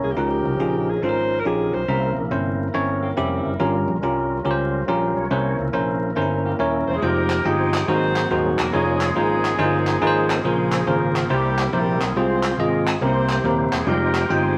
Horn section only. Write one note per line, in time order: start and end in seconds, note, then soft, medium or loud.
6.87 6.95 C4 medium
6.87 6.95 C5 medium
6.95 7.02 G#3 medium
6.95 7.02 G#4 medium
7.04 7.46 A#3 loud
7.04 7.45 D#4 medium
7.04 7.85 G4 medium
7.04 7.46 A#4 loud
7.45 7.88 G#3 medium
7.45 7.86 C4 medium
7.45 7.86 D#4 medium
7.45 7.88 G#4 loud
7.88 8.31 C4 loud
7.88 8.70 D#4 medium
7.88 8.70 F#4 medium
7.88 8.31 C5 loud
8.57 8.72 A#3 medium
8.57 8.72 A#4 loud
8.72 8.99 G#3 medium
8.72 9.00 C#4 medium
8.72 9.00 D#4 medium
8.72 8.99 G#4 loud
9.00 10.25 G#3 loud
9.00 10.26 C#4 medium
9.00 10.26 D#4 medium
9.00 10.25 G#4 loud
10.28 10.36 A#3 medium
10.28 10.36 A#4 medium
10.34 10.86 G#3 medium
10.34 11.18 C4 medium
10.34 10.87 C#4 medium
10.34 10.86 G#4 loud
10.86 11.30 A#3 medium
10.86 11.28 C#4 medium
10.86 11.28 F4 medium
10.86 11.30 A#4 loud
11.29 11.69 G3 medium
11.29 12.12 A#3 medium
11.29 12.12 E4 medium
11.29 11.69 G4 loud
11.72 11.98 G3 medium
11.72 11.98 G4 loud
11.99 12.15 G#3 medium
11.99 12.15 G#4 medium
12.15 12.58 C4 medium
12.15 12.98 F4 medium
12.15 12.83 G#4 medium
12.15 12.58 C5 loud
12.57 12.84 A#3 medium
12.57 12.84 A#4 medium
12.85 13.00 G#3 medium
12.85 13.00 G#4 medium
13.01 13.40 C4 loud
13.01 13.84 E4 medium
13.01 13.84 G4 medium
13.01 13.40 C5 loud
13.70 13.78 C4 medium
13.70 13.78 C5 loud
13.77 13.85 G#3 medium
13.77 13.85 G#4 medium
13.84 14.28 A#3 loud
13.84 14.30 D#4 medium
13.84 14.58 G4 medium
13.84 14.28 A#4 loud
14.28 14.58 G#3 medium
14.28 14.58 C4 medium
14.28 14.58 D#4 medium
14.28 14.58 G#4 medium